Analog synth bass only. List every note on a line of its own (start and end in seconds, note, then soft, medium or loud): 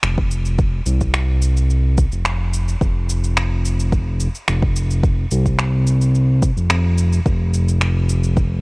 0.03 0.81 F1 medium
0.86 2.06 C2 medium
2.12 2.76 F1 medium
2.81 4.29 F1 loud
4.48 5.26 F1 medium
5.32 6.51 C2 medium
6.57 6.69 F1 medium
6.70 7.20 F1 loud
7.26 8.61 F1 loud